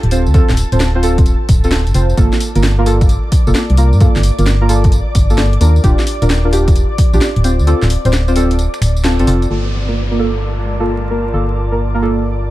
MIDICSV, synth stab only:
0, 0, Header, 1, 2, 480
1, 0, Start_track
1, 0, Key_signature, -2, "minor"
1, 0, Tempo, 458015
1, 358, Time_signature, 4, 2, 24, 8
1, 13105, End_track
2, 0, Start_track
2, 0, Title_t, "Synth stab"
2, 0, Program_c, 0, 62
2, 120, Note_on_c, 0, 60, 85
2, 120, Note_on_c, 0, 65, 74
2, 120, Note_on_c, 0, 72, 94
2, 246, Note_off_c, 0, 60, 0
2, 246, Note_off_c, 0, 65, 0
2, 246, Note_off_c, 0, 72, 0
2, 358, Note_on_c, 0, 60, 97
2, 358, Note_on_c, 0, 65, 89
2, 359, Note_on_c, 0, 69, 106
2, 540, Note_off_c, 0, 60, 0
2, 540, Note_off_c, 0, 65, 0
2, 540, Note_off_c, 0, 69, 0
2, 757, Note_on_c, 0, 65, 70
2, 757, Note_on_c, 0, 72, 86
2, 758, Note_on_c, 0, 60, 77
2, 823, Note_off_c, 0, 60, 0
2, 823, Note_off_c, 0, 65, 0
2, 823, Note_off_c, 0, 72, 0
2, 997, Note_on_c, 0, 60, 86
2, 997, Note_on_c, 0, 65, 78
2, 997, Note_on_c, 0, 72, 96
2, 1066, Note_off_c, 0, 60, 0
2, 1066, Note_off_c, 0, 65, 0
2, 1066, Note_off_c, 0, 72, 0
2, 1080, Note_on_c, 0, 60, 101
2, 1080, Note_on_c, 0, 65, 95
2, 1080, Note_on_c, 0, 69, 116
2, 1261, Note_off_c, 0, 60, 0
2, 1261, Note_off_c, 0, 65, 0
2, 1261, Note_off_c, 0, 69, 0
2, 1718, Note_on_c, 0, 65, 89
2, 1718, Note_on_c, 0, 69, 106
2, 1719, Note_on_c, 0, 60, 99
2, 1844, Note_off_c, 0, 60, 0
2, 1844, Note_off_c, 0, 65, 0
2, 1844, Note_off_c, 0, 69, 0
2, 2039, Note_on_c, 0, 60, 83
2, 2039, Note_on_c, 0, 65, 74
2, 2040, Note_on_c, 0, 72, 90
2, 2166, Note_off_c, 0, 60, 0
2, 2166, Note_off_c, 0, 65, 0
2, 2166, Note_off_c, 0, 72, 0
2, 2280, Note_on_c, 0, 58, 95
2, 2280, Note_on_c, 0, 65, 87
2, 2280, Note_on_c, 0, 69, 102
2, 2461, Note_off_c, 0, 58, 0
2, 2461, Note_off_c, 0, 65, 0
2, 2461, Note_off_c, 0, 69, 0
2, 2677, Note_on_c, 0, 58, 74
2, 2677, Note_on_c, 0, 65, 70
2, 2677, Note_on_c, 0, 70, 81
2, 2742, Note_off_c, 0, 65, 0
2, 2742, Note_off_c, 0, 70, 0
2, 2743, Note_off_c, 0, 58, 0
2, 2917, Note_on_c, 0, 58, 88
2, 2917, Note_on_c, 0, 65, 80
2, 2917, Note_on_c, 0, 70, 98
2, 2986, Note_off_c, 0, 58, 0
2, 2986, Note_off_c, 0, 65, 0
2, 2986, Note_off_c, 0, 70, 0
2, 2997, Note_on_c, 0, 58, 104
2, 2997, Note_on_c, 0, 65, 96
2, 2998, Note_on_c, 0, 69, 112
2, 3179, Note_off_c, 0, 58, 0
2, 3180, Note_off_c, 0, 65, 0
2, 3180, Note_off_c, 0, 69, 0
2, 3635, Note_on_c, 0, 58, 100
2, 3635, Note_on_c, 0, 65, 87
2, 3635, Note_on_c, 0, 69, 104
2, 3763, Note_off_c, 0, 58, 0
2, 3763, Note_off_c, 0, 65, 0
2, 3763, Note_off_c, 0, 69, 0
2, 3957, Note_on_c, 0, 58, 85
2, 3957, Note_on_c, 0, 65, 73
2, 3957, Note_on_c, 0, 70, 94
2, 4085, Note_off_c, 0, 58, 0
2, 4085, Note_off_c, 0, 65, 0
2, 4085, Note_off_c, 0, 70, 0
2, 4196, Note_on_c, 0, 65, 89
2, 4197, Note_on_c, 0, 58, 95
2, 4197, Note_on_c, 0, 69, 105
2, 4379, Note_off_c, 0, 58, 0
2, 4379, Note_off_c, 0, 65, 0
2, 4380, Note_off_c, 0, 69, 0
2, 4595, Note_on_c, 0, 58, 77
2, 4595, Note_on_c, 0, 65, 69
2, 4595, Note_on_c, 0, 70, 83
2, 4661, Note_off_c, 0, 58, 0
2, 4661, Note_off_c, 0, 65, 0
2, 4662, Note_off_c, 0, 70, 0
2, 4834, Note_on_c, 0, 58, 89
2, 4834, Note_on_c, 0, 65, 81
2, 4834, Note_on_c, 0, 70, 98
2, 4905, Note_off_c, 0, 58, 0
2, 4905, Note_off_c, 0, 65, 0
2, 4905, Note_off_c, 0, 70, 0
2, 4915, Note_on_c, 0, 65, 94
2, 4916, Note_on_c, 0, 58, 104
2, 4916, Note_on_c, 0, 69, 117
2, 5099, Note_off_c, 0, 58, 0
2, 5099, Note_off_c, 0, 65, 0
2, 5099, Note_off_c, 0, 69, 0
2, 5555, Note_on_c, 0, 58, 97
2, 5555, Note_on_c, 0, 65, 89
2, 5555, Note_on_c, 0, 69, 106
2, 5683, Note_off_c, 0, 58, 0
2, 5683, Note_off_c, 0, 65, 0
2, 5683, Note_off_c, 0, 69, 0
2, 5877, Note_on_c, 0, 62, 84
2, 5877, Note_on_c, 0, 65, 78
2, 5877, Note_on_c, 0, 70, 94
2, 6005, Note_off_c, 0, 62, 0
2, 6005, Note_off_c, 0, 65, 0
2, 6005, Note_off_c, 0, 70, 0
2, 6117, Note_on_c, 0, 62, 95
2, 6117, Note_on_c, 0, 65, 88
2, 6117, Note_on_c, 0, 67, 108
2, 6300, Note_off_c, 0, 62, 0
2, 6300, Note_off_c, 0, 65, 0
2, 6300, Note_off_c, 0, 67, 0
2, 6517, Note_on_c, 0, 62, 79
2, 6517, Note_on_c, 0, 65, 69
2, 6517, Note_on_c, 0, 70, 83
2, 6582, Note_off_c, 0, 62, 0
2, 6582, Note_off_c, 0, 65, 0
2, 6583, Note_off_c, 0, 70, 0
2, 6756, Note_on_c, 0, 62, 89
2, 6756, Note_on_c, 0, 65, 80
2, 6756, Note_on_c, 0, 70, 98
2, 6826, Note_off_c, 0, 62, 0
2, 6826, Note_off_c, 0, 65, 0
2, 6826, Note_off_c, 0, 70, 0
2, 6838, Note_on_c, 0, 62, 106
2, 6838, Note_on_c, 0, 65, 94
2, 6838, Note_on_c, 0, 67, 114
2, 7020, Note_off_c, 0, 62, 0
2, 7020, Note_off_c, 0, 65, 0
2, 7020, Note_off_c, 0, 67, 0
2, 7476, Note_on_c, 0, 65, 90
2, 7477, Note_on_c, 0, 62, 95
2, 7477, Note_on_c, 0, 67, 106
2, 7603, Note_off_c, 0, 65, 0
2, 7604, Note_off_c, 0, 62, 0
2, 7604, Note_off_c, 0, 67, 0
2, 7797, Note_on_c, 0, 72, 92
2, 7798, Note_on_c, 0, 60, 82
2, 7798, Note_on_c, 0, 65, 75
2, 7925, Note_off_c, 0, 60, 0
2, 7925, Note_off_c, 0, 65, 0
2, 7925, Note_off_c, 0, 72, 0
2, 8038, Note_on_c, 0, 60, 98
2, 8038, Note_on_c, 0, 65, 86
2, 8038, Note_on_c, 0, 69, 103
2, 8220, Note_off_c, 0, 60, 0
2, 8220, Note_off_c, 0, 65, 0
2, 8220, Note_off_c, 0, 69, 0
2, 8437, Note_on_c, 0, 60, 76
2, 8438, Note_on_c, 0, 65, 69
2, 8438, Note_on_c, 0, 72, 84
2, 8503, Note_off_c, 0, 60, 0
2, 8503, Note_off_c, 0, 65, 0
2, 8503, Note_off_c, 0, 72, 0
2, 8675, Note_on_c, 0, 72, 95
2, 8676, Note_on_c, 0, 60, 86
2, 8676, Note_on_c, 0, 65, 82
2, 8745, Note_off_c, 0, 72, 0
2, 8746, Note_off_c, 0, 60, 0
2, 8746, Note_off_c, 0, 65, 0
2, 8759, Note_on_c, 0, 60, 102
2, 8759, Note_on_c, 0, 65, 96
2, 8759, Note_on_c, 0, 69, 114
2, 8940, Note_off_c, 0, 60, 0
2, 8940, Note_off_c, 0, 65, 0
2, 8940, Note_off_c, 0, 69, 0
2, 9478, Note_on_c, 0, 60, 79
2, 9478, Note_on_c, 0, 65, 72
2, 9478, Note_on_c, 0, 69, 90
2, 9613, Note_off_c, 0, 60, 0
2, 9613, Note_off_c, 0, 65, 0
2, 9613, Note_off_c, 0, 69, 0
2, 9636, Note_on_c, 0, 60, 90
2, 9636, Note_on_c, 0, 65, 82
2, 9636, Note_on_c, 0, 69, 100
2, 9702, Note_off_c, 0, 60, 0
2, 9702, Note_off_c, 0, 65, 0
2, 9702, Note_off_c, 0, 69, 0
2, 9719, Note_on_c, 0, 60, 85
2, 9719, Note_on_c, 0, 65, 81
2, 9719, Note_on_c, 0, 69, 100
2, 9900, Note_off_c, 0, 60, 0
2, 9901, Note_off_c, 0, 65, 0
2, 9901, Note_off_c, 0, 69, 0
2, 9959, Note_on_c, 0, 65, 85
2, 9960, Note_on_c, 0, 58, 92
2, 9960, Note_on_c, 0, 69, 100
2, 10141, Note_off_c, 0, 58, 0
2, 10141, Note_off_c, 0, 65, 0
2, 10141, Note_off_c, 0, 69, 0
2, 10356, Note_on_c, 0, 58, 70
2, 10356, Note_on_c, 0, 65, 66
2, 10357, Note_on_c, 0, 70, 79
2, 10422, Note_off_c, 0, 58, 0
2, 10422, Note_off_c, 0, 65, 0
2, 10422, Note_off_c, 0, 70, 0
2, 10596, Note_on_c, 0, 58, 82
2, 10596, Note_on_c, 0, 65, 78
2, 10597, Note_on_c, 0, 70, 90
2, 10666, Note_off_c, 0, 58, 0
2, 10666, Note_off_c, 0, 65, 0
2, 10666, Note_off_c, 0, 70, 0
2, 10677, Note_on_c, 0, 58, 95
2, 10677, Note_on_c, 0, 65, 90
2, 10677, Note_on_c, 0, 69, 110
2, 10859, Note_off_c, 0, 58, 0
2, 10859, Note_off_c, 0, 65, 0
2, 10860, Note_off_c, 0, 69, 0
2, 11317, Note_on_c, 0, 58, 94
2, 11317, Note_on_c, 0, 65, 87
2, 11317, Note_on_c, 0, 69, 106
2, 11444, Note_off_c, 0, 58, 0
2, 11444, Note_off_c, 0, 65, 0
2, 11444, Note_off_c, 0, 69, 0
2, 11638, Note_on_c, 0, 58, 78
2, 11638, Note_on_c, 0, 65, 71
2, 11639, Note_on_c, 0, 70, 85
2, 11766, Note_off_c, 0, 58, 0
2, 11766, Note_off_c, 0, 65, 0
2, 11766, Note_off_c, 0, 70, 0
2, 11878, Note_on_c, 0, 69, 98
2, 11879, Note_on_c, 0, 58, 92
2, 11879, Note_on_c, 0, 65, 82
2, 12060, Note_off_c, 0, 58, 0
2, 12060, Note_off_c, 0, 65, 0
2, 12060, Note_off_c, 0, 69, 0
2, 12277, Note_on_c, 0, 58, 72
2, 12278, Note_on_c, 0, 65, 66
2, 12278, Note_on_c, 0, 70, 80
2, 12343, Note_off_c, 0, 58, 0
2, 12343, Note_off_c, 0, 65, 0
2, 12343, Note_off_c, 0, 70, 0
2, 12517, Note_on_c, 0, 58, 83
2, 12517, Note_on_c, 0, 65, 75
2, 12517, Note_on_c, 0, 70, 95
2, 12586, Note_off_c, 0, 58, 0
2, 12586, Note_off_c, 0, 65, 0
2, 12586, Note_off_c, 0, 70, 0
2, 12599, Note_on_c, 0, 58, 100
2, 12599, Note_on_c, 0, 65, 91
2, 12599, Note_on_c, 0, 69, 106
2, 12780, Note_off_c, 0, 58, 0
2, 12780, Note_off_c, 0, 65, 0
2, 12780, Note_off_c, 0, 69, 0
2, 13105, End_track
0, 0, End_of_file